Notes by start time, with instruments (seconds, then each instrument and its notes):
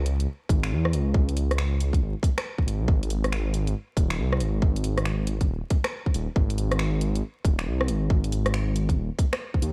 Already playing: detuned saw bass C#2
0.06 closed hi-hat
0.20 closed hi-hat
0.49 detuned saw bass G#1, kick, closed hi-hat
0.63 finger snap
0.72 detuned saw bass E2
0.85 cross-stick
0.93 detuned saw bass C#2, closed hi-hat
1.14 detuned saw bass C#2, kick
1.29 closed hi-hat
1.37 closed hi-hat
1.51 cross-stick, closed hi-hat
1.58 finger snap
1.81 closed hi-hat
1.93 kick, closed hi-hat
2.02 detuned saw bass G#1
2.23 kick, closed hi-hat
2.38 finger snap, cross-stick
2.58 kick
2.66 detuned saw bass G#1, closed hi-hat
2.81 detuned saw bass B1
2.88 detuned saw bass G#1, kick
3.03 closed hi-hat
3.10 closed hi-hat
3.24 cross-stick, closed hi-hat
3.32 finger snap
3.54 closed hi-hat
3.67 closed hi-hat
3.97 detuned saw bass D#1, kick, closed hi-hat
4.10 finger snap
4.19 detuned saw bass C2
4.32 cross-stick
4.40 detuned saw bass G#1, closed hi-hat
4.62 detuned saw bass G#1, kick
4.76 closed hi-hat
4.84 closed hi-hat
4.98 cross-stick, closed hi-hat
5.05 finger snap
5.27 closed hi-hat
5.41 kick, closed hi-hat
5.49 detuned saw bass D#1
5.70 kick, closed hi-hat
5.84 finger snap, cross-stick
6.06 kick
6.14 detuned saw bass D#1, closed hi-hat
6.36 detuned saw bass G#1, kick
6.50 closed hi-hat
6.58 closed hi-hat
6.72 cross-stick, closed hi-hat
6.79 finger snap
7.01 closed hi-hat
7.16 closed hi-hat
7.45 detuned saw bass D#1, kick, closed hi-hat
7.59 finger snap
7.67 detuned saw bass C2
7.81 cross-stick
7.88 detuned saw bass G#1, closed hi-hat
8.10 detuned saw bass G#1, kick
8.24 closed hi-hat
8.32 closed hi-hat
8.46 cross-stick, closed hi-hat
8.54 finger snap
8.76 closed hi-hat
8.89 kick, closed hi-hat
8.97 detuned saw bass D#1
9.19 kick, closed hi-hat
9.33 finger snap, cross-stick
9.54 kick
9.62 detuned saw bass D#2, closed hi-hat